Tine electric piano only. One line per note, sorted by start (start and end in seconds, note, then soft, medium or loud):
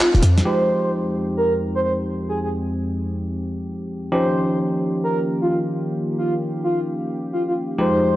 0.45 4.10 F3 medium
0.45 4.10 G#3 medium
0.45 4.10 D#4 medium
0.45 4.10 G4 medium
4.12 7.77 F3 medium
4.12 7.77 C#4 medium
4.12 7.77 D#4 medium
4.12 7.77 G4 medium
7.78 8.16 F3 medium
7.78 8.16 G#3 medium
7.78 8.16 D#4 medium
7.78 8.16 G4 medium